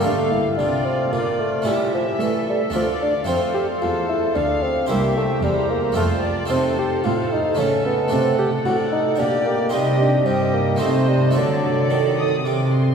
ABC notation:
X:1
M:3/4
L:1/8
Q:1/4=111
K:Dm
V:1 name="Violin section"
f2 f2 d2 | e4 f2 | f2 a2 f2 | g2 b2 a2 |
[K:Dphr] a2 f2 =e2 | ^f4 g2 | g2 g2 a2 | a2 a e' d' c' |]
V:2 name="Violin section"
f2 d2 d2 | e4 d2 | c4 f2 | e2 c2 c d |
[K:Dphr] c2 c2 A2- | A2 d2 d2 | e2 e2 e2 | d4- d z |]
V:3 name="Viola section"
A2 F2 F2 | G2 A2 A2 | A6 | G2 G2 F2 |
[K:Dphr] A4 A2 | A4 G2 | G2 G2 c2 | A4- A z |]
V:4 name="Bassoon"
A, E D C B, A, | G, F, E, G, F, D | C G F E D C | B, A, G, B, A, z |
[K:Dphr] C G F E ^C =B, | C G ^F E D B, | G, D C B, A, G, | ^F,4 z2 |]
V:5 name="Harpsichord"
[A,DF]6 | [A,^CE]4 [A,DF]2 | [A,CF]6 | [CE]4 [A,CF]2 |
[K:Dphr] [A,CE]4 [A,^C]2 | [A,D]4 D2 | [CE]4 [A,CE]2 | [A,D]6 |]
V:6 name="Harpsichord" clef=bass
D,2 C,2 B,,2 | A,,2 A,2 D,,2 | F,,2 E,,2 D,,2 | C,,2 E,,2 F,,2 |
[K:Dphr] C,2 A,,2 ^C,2 | C,2 A,,2 B,,2 | C,2 G,,2 C,2 | D,2 E,2 C,2 |]
V:7 name="Cello section" clef=bass
D,2 C,2 B,,2 | A,,2 A,2 D,,2 | F,,2 E,,2 D,,2 | C,,2 E,,2 F,,2 |
[K:Dphr] C,2 A,,2 ^C,2 | C,2 A,,2 B,,2 | C,2 G,,2 C,2 | D,2 E,2 C,2 |]